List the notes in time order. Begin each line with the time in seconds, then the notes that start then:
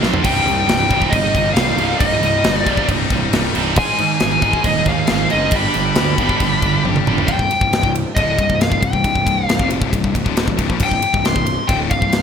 0.01 B1 F2 C3 F3 C4 F4, snare
0.09 C4 F4
0.14 C4 F4, floor tom
0.22 C1 C2 G2 C3 G3 D#4 G5, kick, crash
0.32 G3 D#4
0.40 G3 D#4
0.46 C2 G2 G3 D#4, crash
0.55 G3 D#4
0.62 G3 D#4
0.67 C1 C2 G2 G3 D#4 G5, snare, crash
0.77 G3 D#4
0.85 G3 D#4
0.91 C1 C2 G2 C3 G3 D#4, kick, crash
1.00 G3 D#4, kick
1.08 G3 D#4 D#5
1.12 G1 C2 G2 G3 D#4, kick, crash
1.23 G3 D#4
1.30 G3 D#4
1.35 G1 C2 G2 G3, kick, crash
1.39 D#4
1.46 G3 D#4
1.52 C1 G3 D#4 F5
1.56 C2 G2, snare, crash
1.61 G3 D#4
1.68 G3 D#4
1.75 C1 C2 G2 G3 D#4, crash
1.80 C3 G3 D#4
1.91 G3 D#4
1.99 C1 C2 G2 G3 D#4 D#5, kick, crash
2.07 G3 D#4
2.15 G3 D#4
2.22 C1 C2 G2 G3 D#4, crash
2.31 G3 D#4
2.37 G3 D#4
2.44 G1 C2 G2 G3 D#4, snare, crash
2.53 G3 D#4 D5
2.62 G3 D#4
2.67 C1 C2 G2 C3 G3 D#4, kick, crash
2.76 G3 D#4, kick
2.84 G3 D#4
2.88 C1 C2 G2 D#4, kick, crash
2.93 G3
2.99 G3 D#4
3.06 G3 D#4
3.10 C1 C2 G2, kick, crash
3.14 G3 D#4
3.22 G3 D#4
3.30 C1 C2 G3 D#4, snare, crash
3.35 G2 G3 D#4
3.46 G3 D#4
3.53 C1 C2 G2 G3 D#4, crash
3.57 C3 D#4
3.61 G3
3.68 G3 D#4
3.76 G#1 G#2 D#3 G#3 D#4 G#4 G#5, kick, crash
3.85 D#4 G#4
3.92 D#4 G#4
3.98 G#2 D#3 D#4 G#4, crash
4.07 D#4 G#4
4.15 D#4 G#4
4.20 G#1 G#2 D#3 D#4 G#4 G#5, snare, crash
4.31 D#4 G#4
4.38 D#4 G#4, crash
4.42 G#1 G#2 D#3 G#3 D#4 G#4, kick
4.53 D#4 G#4, kick
4.61 D#1 D#4 G#4 D#5, kick, crash
4.66 G#2 D#3 D#4 G#4
4.77 D#4 G#4
4.83 D#2 D#4 G#4, kick, crash
4.88 G#2 D#3 F5
4.92 D#4 G#4
4.99 D#4 G#4
5.07 G#1 G#2 D#3 D#4 G#4, snare, crash
5.15 D#4 G#4
5.23 D#4 G#4
5.30 F#1 G#2 D#3 G#3 D#4 G#4 D#5, crash
5.38 D#4 G#4
5.45 D#4 G#4
5.51 G1 G2 D3 G3 D4 G4, kick, crash
5.56 B5
5.60 D4 G4
5.69 D4 G4
5.74 G1 G2 D3 D4 G4, crash
5.84 D4 G4
5.92 D4 G4, crash
5.96 D2 G2 D3 D4 G4, snare
6.06 D4 G4
6.14 D4 G4, kick, crash
6.19 G1 G2 D3 G3 D4
6.23 G4
6.29 D4 G4, kick
6.37 D4 G4, kick, crash
6.41 G1 G2 D3 D4
6.46 G4
6.53 D4 G4
6.59 G1 D4 G4, kick, crash
6.64 G2 D3 D4
6.68 G4
6.76 D4 G4
6.83 G1 G2 D3 D4 G4, high tom
6.91 D4 G4
6.96 D4, mid tom
7.00 G4
7.06 G1 G2 D3 G3 D4 G4, mid tom
7.13 D4 G4
7.18 D4 G4, floor tom
7.27 C1 C2 G2 G5, kick, ride
7.39 C1 C2 G2, kick
7.50 muted picked electric bass stroke, muted distorted electric guitar stroke, ride
7.61 C1 C2 G2, kick
7.71 C1 C2 G2, snare, ride
7.83 C1 C2 G2, kick
7.95 ride
8.15 D1 D2 A2 D3 D#5, kick, ride
8.39 C1 C2 G2, kick, ride
8.49 C1 C2 G2, kick
8.61 F5, snare, ride
8.69 C1 C2 G2, kick
8.81 C1 C2 G2 G5, kick, ride
8.93 C1 C2 G2, kick
9.04 C1 C2 G2, kick, ride
9.15 C1 C2 G2, kick
9.26 C1 C2 G2, kick, ride
9.43 F5
9.48 C1 C2 G2, snare, ride
9.59 F1 F2 C3 F3, kick
9.70 ride
9.82 C1 C2 G2, kick
9.93 C1 C2 G2, kick, ride
10.04 C1 C2 G2, kick
10.14 C1 C2 G2, kick, ride
10.24 D1 D2 A2 D3, kick
10.37 snare, ride
10.47 C1 C2 G2, kick
10.57 C1 C2 G2, kick, ride
10.69 A#1 A#2 F3, kick
10.79 C1 C2 G2, kick, crash
10.83 G5
10.91 C1 C2 G2, kick
11.02 muted picked electric bass stroke, muted distorted electric guitar stroke, ride
11.13 C1 C2 G2, kick
11.24 C1 C2 G2 C6, snare, ride
11.35 C1 C2 G2, kick
11.47 ride
11.68 D1 D2 A2 D3 G5, kick, ride
11.90 C1 C2 G2 F5, kick, ride
12.01 C1 C2 G2, kick
12.12 snare, ride